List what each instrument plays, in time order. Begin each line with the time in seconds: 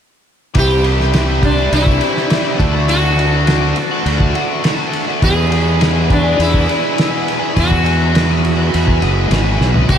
0.54 fingered electric bass C2, overdriven electric guitar C3 E3 G3 C4 E4, tonewheel organ G4 C5 E5 G5, kick, ride
0.58 sitar G4
0.83 overdriven electric guitar E3 G3 C4 E4, ride
1.00 snare
1.13 overdriven electric guitar C3 E3 G3 C4 E4, snare, ride
1.28 overdriven electric guitar G3 C4 E4
1.43 sitar D4, muted overdriven electric guitar stroke, kick, ride
1.57 overdriven electric guitar G3 C4 E4
1.72 fingered electric bass C2, overdriven electric guitar E3 G3 C4 E4, sitar E4, ride
1.86 overdriven electric guitar G3 C4 E4, kick
2.01 overdriven electric guitar E3 G3 C4 E4, ride
2.17 snare
2.30 overdriven electric guitar C3 E3 G3 C4 E4, snare, ride
2.44 overdriven electric guitar G3 C4 E4
2.55 overdriven electric guitar D3 A3, sitar D4, tonewheel organ A4
2.59 fingered electric bass D2, overdriven electric guitar D4 F#4, tonewheel organ D5 F#5 A5, kick, ride
2.73 overdriven electric guitar A3 D4 F#4
2.87 overdriven electric guitar D3 A3 D4 F#4, sitar F#4, ride
3.17 overdriven electric guitar D3 A3 D4 F#4, ride
3.46 overdriven electric guitar D3 A3 D4 F#4, snare, ride
3.61 overdriven electric guitar A3 D4 F#4
3.76 muted overdriven electric guitar stroke, ride
3.91 overdriven electric guitar A3 D4 F#4
4.05 fingered electric bass D2, overdriven electric guitar D3 A3 D4 F#4, ride
4.18 overdriven electric guitar A3 D4 F#4, sitar E4, kick
4.33 overdriven electric guitar D3 A3 D4 F#4, ride
4.63 overdriven electric guitar D3 A3 D4 F#4, snare, ride
4.77 overdriven electric guitar A3 D4 F#4
4.93 ride
5.07 overdriven electric guitar A3 D4 F#4
5.21 overdriven electric guitar E2 B2 E3 G#3 B3 G#4, fingered electric bass E2, sitar G#4, tonewheel organ B4 E5 G#5 B5, kick, ride
5.50 overdriven electric guitar E3 G#3 B3 G#4, ride
5.79 overdriven electric guitar E2 B2 E3 G#3 B3 G#4, snare, ride
5.94 overdriven electric guitar E3 G#3 B3 G#4
6.10 sitar D4, muted overdriven electric guitar stroke, kick, ride
6.24 overdriven electric guitar E3 G#3 B3 G#4
6.39 fingered electric bass E2, overdriven electric guitar E3 G#3 B3 G#4, sitar E4, ride
6.52 overdriven electric guitar E3 G#3 B3 G#4, kick
6.67 overdriven electric guitar E3 G#3 B3 G#4, ride
6.95 overdriven electric guitar E2 B2 E3 G#3 B3 G#4, ride
6.99 snare
7.10 overdriven electric guitar E3 G#3 B3 G#4
7.28 ride
7.39 overdriven electric guitar E3 G#3 B3 G#4
7.53 overdriven electric guitar E2 B2 E3 G#3 B3 G#4, fingered electric bass E2, kick, ride
7.58 sitar F#4
7.71 kick
7.82 overdriven electric guitar E3 G#3 B3 G#4, ride
8.12 overdriven electric guitar E2 B2 E3 G#3 B3 G#4, snare, ride
8.27 overdriven electric guitar E3 G#3 B3 G#4
8.42 muted overdriven electric guitar stroke, ride
8.56 overdriven electric guitar E3 G#3 B3 G#4
8.70 overdriven electric guitar E3 G#3 B3 G#4, ride
8.74 fingered electric bass E2
8.85 overdriven electric guitar E3 G#3 B3 G#4, kick
9.00 fingered electric bass F#1, overdriven electric guitar E3 G#3 B3 G#4, ride
9.30 fingered electric bass G#1, overdriven electric guitar E2 B2 E3 G#3 B3 G#4, snare, ride
9.44 overdriven electric guitar E3 G#3 B3 G#4
9.60 fingered electric bass B1, snare
9.73 overdriven electric guitar E3 G#3 B3 G#4, floor tom
9.88 fingered electric bass C2, overdriven electric guitar C3 E3 G3 C4 G4, sitar G4, kick, ride
9.92 tonewheel organ C5 G5 C6